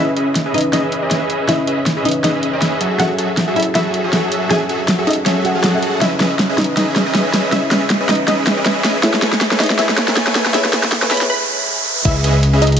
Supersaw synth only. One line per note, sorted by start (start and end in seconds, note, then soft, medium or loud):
0.16 0.27 C#4 medium
0.16 0.27 G#4 medium
0.16 0.27 B4 medium
0.16 0.27 D#5 medium
0.16 0.27 E5 loud
0.46 0.54 C#4 medium
0.46 0.54 G#4 medium
0.46 0.54 B4 medium
0.46 0.54 D#5 medium
0.46 0.54 E5 medium
0.73 1.00 C#4 medium
0.73 1.00 G#4 medium
0.73 1.00 B4 medium
0.73 1.00 D#5 medium
0.73 1.00 E5 medium
1.02 1.28 C#4 medium
1.02 1.28 G#4 medium
1.02 1.28 B4 medium
1.02 1.28 D#5 medium
1.02 1.28 E5 loud
1.30 1.47 C#4 medium
1.30 1.47 G#4 medium
1.30 1.47 B4 medium
1.30 1.47 D#5 medium
1.30 1.47 E5 medium
1.49 1.59 C#4 medium
1.49 1.59 G#4 medium
1.49 1.59 B4 medium
1.49 1.59 D#5 medium
1.49 1.59 E5 medium
1.67 1.78 C#4 medium
1.67 1.78 G#4 medium
1.67 1.78 B4 medium
1.67 1.78 D#5 medium
1.67 1.78 E5 loud
1.97 2.05 C#4 medium
1.97 2.05 G#4 medium
1.97 2.05 B4 medium
1.97 2.05 D#5 medium
1.97 2.05 E5 medium
2.24 2.51 C#4 medium
2.24 2.51 G#4 medium
2.24 2.51 B4 medium
2.24 2.51 D#5 medium
2.24 2.51 E5 medium
2.53 2.79 C#4 medium
2.53 2.79 G#4 medium
2.53 2.79 B4 medium
2.53 2.79 D#5 medium
2.53 2.79 E5 loud
2.81 2.98 F#3 medium
2.81 2.98 F#4 medium
2.81 2.98 G#4 medium
2.81 2.98 A4 medium
2.81 2.98 E5 medium
2.99 3.10 F#3 medium
2.99 3.10 F#4 medium
2.99 3.10 G#4 medium
2.99 3.10 A4 medium
2.99 3.10 E5 medium
3.18 3.29 F#3 medium
3.18 3.29 F#4 medium
3.18 3.29 G#4 medium
3.18 3.29 A4 medium
3.18 3.29 E5 loud
3.48 3.56 F#3 medium
3.48 3.56 F#4 medium
3.48 3.56 G#4 medium
3.48 3.56 A4 medium
3.48 3.56 E5 medium
3.75 4.02 F#3 medium
3.75 4.02 F#4 medium
3.75 4.02 G#4 medium
3.75 4.02 A4 medium
3.75 4.02 E5 medium
4.04 4.30 F#3 loud
4.04 4.30 F#4 medium
4.04 4.30 G#4 medium
4.04 4.30 A4 medium
4.04 4.30 E5 loud
4.32 4.48 F#3 medium
4.32 4.48 F#4 medium
4.32 4.48 G#4 medium
4.32 4.48 A4 medium
4.32 4.48 E5 medium
4.50 4.61 F#3 medium
4.50 4.61 F#4 medium
4.50 4.61 G#4 medium
4.50 4.61 A4 medium
4.50 4.61 E5 medium
4.69 4.80 F#3 medium
4.69 4.80 F#4 medium
4.69 4.80 G#4 medium
4.69 4.80 A4 medium
4.69 4.80 E5 loud
4.99 5.07 F#3 medium
4.99 5.07 F#4 medium
4.99 5.07 G#4 medium
4.99 5.07 A4 medium
4.99 5.07 E5 medium
5.26 5.53 F#3 medium
5.26 5.53 F#4 medium
5.26 5.53 G#4 medium
5.26 5.53 A4 medium
5.26 5.53 E5 medium
5.55 5.81 F#3 loud
5.55 5.81 F#4 medium
5.55 5.81 G#4 medium
5.55 5.81 A4 medium
5.55 5.81 F#5 loud
5.82 5.99 F#3 medium
5.82 5.99 F#4 medium
5.82 5.99 G#4 medium
5.82 5.99 A4 medium
5.82 5.99 F#5 loud
6.01 6.12 C#4 medium
6.01 6.12 G#4 medium
6.01 6.12 B4 medium
6.01 6.12 D#5 medium
6.01 6.12 E5 medium
6.20 6.31 C#4 loud
6.20 6.31 G#4 medium
6.20 6.31 B4 medium
6.20 6.31 D#5 medium
6.20 6.31 E5 loud
6.49 6.58 C#4 medium
6.49 6.58 G#4 medium
6.49 6.58 B4 medium
6.49 6.58 D#5 medium
6.49 6.58 E5 medium
6.77 7.04 C#4 medium
6.77 7.04 G#4 medium
6.77 7.04 B4 medium
6.77 7.04 D#5 medium
6.77 7.04 E5 medium
7.06 7.31 C#4 medium
7.06 7.31 G#4 medium
7.06 7.31 B4 medium
7.06 7.31 D#5 medium
7.06 7.31 E5 loud
7.33 7.50 C#4 medium
7.33 7.50 G#4 medium
7.33 7.50 B4 medium
7.33 7.50 D#5 medium
7.33 7.50 E5 medium
7.52 7.63 C#4 medium
7.52 7.63 G#4 medium
7.52 7.63 B4 medium
7.52 7.63 D#5 medium
7.52 7.63 E5 medium
7.71 7.82 C#4 medium
7.71 7.82 G#4 medium
7.71 7.82 B4 medium
7.71 7.82 D#5 medium
7.71 7.82 E5 loud
8.00 8.09 C#4 medium
8.00 8.09 G#4 medium
8.00 8.09 B4 medium
8.00 8.09 D#5 medium
8.00 8.09 E5 medium
8.28 8.55 C#4 medium
8.28 8.55 G#4 medium
8.28 8.55 B4 medium
8.28 8.55 D#5 medium
8.28 8.55 E5 medium
8.57 8.82 C#4 loud
8.57 8.82 G#4 medium
8.57 8.82 B4 medium
8.57 8.82 D#5 medium
8.57 8.82 E5 loud
8.84 9.01 C#4 medium
8.84 9.01 G#4 medium
8.84 9.01 B4 medium
8.84 9.01 D#5 medium
8.84 9.01 E5 medium
9.03 9.14 A3 medium
9.03 9.14 A4 medium
9.03 9.14 B4 medium
9.03 9.14 C#5 medium
9.03 9.14 G#5 medium
9.22 9.33 A3 medium
9.22 9.33 A4 medium
9.22 9.33 B4 medium
9.22 9.33 C#5 medium
9.22 9.33 G#5 loud
9.51 9.60 A3 medium
9.51 9.60 A4 medium
9.51 9.60 B4 medium
9.51 9.60 C#5 medium
9.51 9.60 G#5 medium
9.79 10.06 A3 medium
9.79 10.06 A4 medium
9.79 10.06 B4 medium
9.79 10.06 C#5 medium
9.79 10.06 G#5 medium
10.08 10.33 A3 loud
10.08 10.33 A4 medium
10.08 10.33 B4 medium
10.08 10.33 C#5 medium
10.08 10.33 G#5 loud
10.35 10.52 A3 medium
10.35 10.52 A4 medium
10.35 10.52 B4 medium
10.35 10.52 C#5 medium
10.35 10.52 G#5 medium
10.54 10.65 A3 medium
10.54 10.65 A4 medium
10.54 10.65 B4 medium
10.54 10.65 C#5 medium
10.54 10.65 G#5 medium
10.73 10.84 A3 loud
10.73 10.84 A4 medium
10.73 10.84 B4 medium
10.73 10.84 C#5 medium
10.73 10.84 G#5 loud
11.02 11.11 A3 medium
11.02 11.11 A4 medium
11.02 11.11 B4 medium
11.02 11.11 C#5 medium
11.02 11.11 G#5 medium
12.05 12.16 C#4 medium
12.05 12.16 G#4 medium
12.05 12.16 B4 medium
12.05 12.16 D#5 medium
12.05 12.16 E5 medium
12.24 12.35 C#4 loud
12.24 12.35 G#4 medium
12.24 12.35 B4 medium
12.24 12.35 D#5 medium
12.24 12.35 E5 loud
12.53 12.62 C#4 medium
12.53 12.62 G#4 medium
12.53 12.62 B4 medium
12.53 12.62 D#5 medium
12.53 12.62 E5 medium